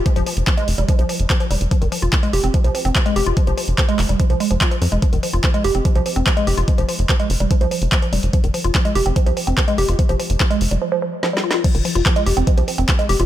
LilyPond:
<<
  \new Staff \with { instrumentName = "Synth arpeggio sound" } { \clef bass \time 4/4 \key f \minor \tempo 4 = 145 f16 f16 f16 r16 f16 aes16 r16 g16 f16 f16 f16 r16 f16 f16 g16 r16 | f16 ees16 f16 f'16 r16 aes16 g'16 c'16 f16 f16 f16 c'16 f16 aes16 g'16 f'16 | f16 f16 f16 r16 f16 aes16 r16 g16 f16 f16 aes16 f16 f'16 f16 f16 aes16 | f16 ees16 f16 f'16 f16 aes16 g'16 c'16 f16 f16 f16 c'16 f16 aes16 g'16 f'16 |
f16 f16 f16 r16 f16 aes16 r16 g16 f16 f16 f16 r16 f16 f16 g16 r16 | f16 ees16 f16 f'16 f16 aes16 g'16 c'16 f16 f16 f16 c'16 f16 aes16 g'16 f'16 | f16 f16 f16 r16 f16 aes16 r16 g16 f16 f16 f16 r16 f16 g16 f'16 f'16 | f16 ees16 f16 f'16 f16 aes16 g'16 c'16 f16 f16 f16 c'16 f16 aes16 g'16 f'16 | }
  \new Staff \with { instrumentName = "Analog synth bass" } { \clef bass \time 4/4 \key f \minor r16 f,,16 r16 f,,16 r8 f,,16 f,,16 r16 c,16 r16 f,,16 r8 f,,16 f,,16 | r16 f,,16 r16 f,,16 r8 f,,16 f,,16 r16 c,16 r16 f,,16 r8 f,,16 f,,16 | r16 f,,16 r16 f,,16 r8 f,,16 f,,16 r16 c,16 r16 f,,16 r8 f,16 f,,16 | r16 f,,16 r16 f,,16 r8 f,,16 f,,16 r16 c,16 r16 f,,16 r8 f,,16 f,,16 |
r16 f,,16 r16 f,,16 r8 f,,16 f,,16 r16 c,16 r16 f,,16 r8 f,,16 f,,16 | r16 f,,16 r16 f,,16 r8 f,,16 f,,16 r16 c,16 r16 f,,16 r8 f,,16 f,,16 | r16 f,,16 r16 f,,16 r8 f,,16 f,,16 r2 | r16 f,,16 r16 f,,16 r8 f,,16 f,,16 r16 c,16 r16 f,,16 r8 f,,16 f,,16 | }
  \new DrumStaff \with { instrumentName = "Drums" } \drummode { \time 4/4 <hh bd>16 hh16 hho16 hh16 <hc hh bd>16 hh16 hho16 hh16 <hh bd>16 hh16 hho16 hh16 <hc hh bd>16 hh16 hho16 hh16 | <hh bd>16 hh16 hho16 hh16 <hc hh bd>16 hh16 hho16 hh16 <hh bd>16 hh16 hho16 hh16 <hc hh bd>16 hh16 hho16 hh16 | <hh bd>16 hh16 hho16 hh16 <hc hh bd>16 hh16 <hc hho>16 hh16 <hh bd>16 hh16 hho16 hh16 <hc hh bd>16 hh16 hho16 hh16 | <hh bd>16 hh16 hho16 hh16 <hc hh bd>16 hh16 hho16 hh16 <hh bd>16 hh16 hho16 hh16 <hc hh bd>16 hh16 hho16 hh16 |
<hh bd>16 hh16 hho16 hh16 <hc hh bd>16 hh16 hho16 hh16 <hh bd>16 hh16 hho16 hh16 <hc hh bd>16 hh16 hho16 hh16 | <hh bd>16 hh16 hho16 hh16 <hc hh bd>16 hh16 hho16 hh16 <hh bd>16 hh16 hho16 hh16 <hc hh bd>16 hh16 hho16 hh16 | <hh bd>16 hh16 hho16 hh16 <hc hh bd>16 hh16 hho16 hh16 r4 \tuplet 3/2 { sn8 sn8 sn8 } | <cymc hh bd>16 hh16 hho16 hh16 <hc hh bd>16 hh16 hho16 hh16 <hh bd>16 hh16 hho16 hh16 <hc hh bd>16 hh16 hho16 hh16 | }
>>